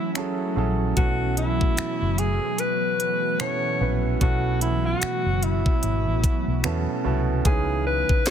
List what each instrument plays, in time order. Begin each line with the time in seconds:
Already playing: ambient pad E3 F#3 A3 C#4 F#4, alto saxophone E4
0.15 grand piano F#3 C#4 E4 G#4 A4, finger snap, closed hi-hat
0.56 fingered electric bass A#1, grand piano F#3 C#4 E4 G#4 A4
0.96 fingered electric bass B1, grand piano B2 B3 C#4 E4 A4, ambient pad B3, alto saxophone F#4, kick, closed hi-hat
1.37 alto saxophone E4, closed hi-hat
1.61 kick
1.77 finger snap, muted fingered electric bass stroke, closed hi-hat
2.02 fingered electric bass F#1
2.18 alto saxophone G#4, closed hi-hat
2.58 alto saxophone B4, closed hi-hat
3.00 closed hi-hat
3.40 grand piano B2 B3 C#4 E4 A4, alto saxophone C#5, finger snap, closed hi-hat
3.81 fingered electric bass A#1, grand piano B3 C#4 E4 B4
4.21 fingered electric bass B1, grand piano B2 B3 C#4 E4 A4, alto saxophone F#4, kick, closed hi-hat
4.61 alto saxophone E4, closed hi-hat
4.86 alto saxophone F#4
5.02 finger snap, muted fingered electric bass stroke, closed hi-hat
5.26 fingered electric bass F#1
5.43 alto saxophone E4, closed hi-hat
5.66 kick
5.83 fingered electric bass G#1, closed hi-hat
6.07 fingered electric bass A1
6.24 kick, closed hi-hat
6.48 fingered electric bass B1
6.64 fingered electric bass E2, grand piano B2 B3 C#4 E4 A4, finger snap, closed hi-hat
7.04 fingered electric bass C2, grand piano B2 B3 C#4 E4 A4
7.45 fingered electric bass C#2, grand piano C#3 C#4 D#4 E4 B4, ambient pad C#3 E3 G#3 B3 C#4, alto saxophone G#4, kick, closed hi-hat
7.87 alto saxophone B4
8.09 muted fingered electric bass stroke, kick
8.26 snare, closed hi-hat